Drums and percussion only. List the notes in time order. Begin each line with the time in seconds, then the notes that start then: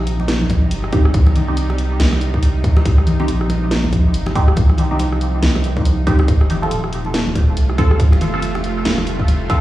0.07 closed hi-hat
0.20 muted conga
0.28 snare, closed hi-hat
0.41 high conga
0.50 kick, closed hi-hat, muted conga
0.71 closed hi-hat
0.84 cross-stick
0.93 kick, closed hi-hat, muted conga, high conga
1.05 cross-stick
1.14 kick, closed hi-hat, high conga
1.27 cross-stick, muted conga
1.36 closed hi-hat, low conga
1.57 closed hi-hat
1.70 cross-stick, muted conga
1.78 closed hi-hat
2.00 snare, closed hi-hat, muted conga
2.13 cross-stick, high conga
2.21 closed hi-hat
2.34 kick
2.43 closed hi-hat, muted conga
2.64 kick, closed hi-hat, high conga
2.77 cross-stick, muted conga
2.85 kick, closed hi-hat, high conga
2.98 cross-stick
3.07 closed hi-hat, low conga
3.20 muted conga
3.28 closed hi-hat
3.41 cross-stick
3.50 closed hi-hat, muted conga
3.71 snare, closed hi-hat
3.84 high conga
3.93 kick, closed hi-hat, muted conga
4.14 closed hi-hat
4.26 cross-stick, muted conga
4.35 kick, closed hi-hat, high conga
4.48 cross-stick
4.56 kick, closed hi-hat, high conga
4.69 cross-stick, muted conga
4.78 closed hi-hat, low conga
4.99 closed hi-hat, muted conga
5.12 cross-stick
5.21 closed hi-hat
5.43 snare, closed hi-hat, muted conga
5.55 cross-stick, high conga
5.64 closed hi-hat
5.77 kick, muted conga, high conga
5.85 closed hi-hat
6.07 kick, closed hi-hat, high conga
6.19 cross-stick, muted conga
6.28 kick, closed hi-hat, muted conga, high conga
6.41 cross-stick
6.50 closed hi-hat, low conga
6.63 muted conga
6.71 closed hi-hat
6.84 cross-stick
6.93 closed hi-hat
7.05 muted conga
7.14 snare, closed hi-hat
7.27 high conga
7.35 kick, closed hi-hat, muted conga
7.57 closed hi-hat
7.70 cross-stick
7.78 kick, closed hi-hat, muted conga, high conga
7.91 cross-stick
8.00 kick, closed hi-hat, high conga
8.12 cross-stick, muted conga
8.21 closed hi-hat, low conga
8.42 closed hi-hat
8.55 cross-stick, muted conga
8.64 closed hi-hat
8.85 snare, closed hi-hat, muted conga
8.98 cross-stick, high conga
9.07 closed hi-hat
9.20 kick
9.28 closed hi-hat, muted conga
9.50 kick, closed hi-hat, high conga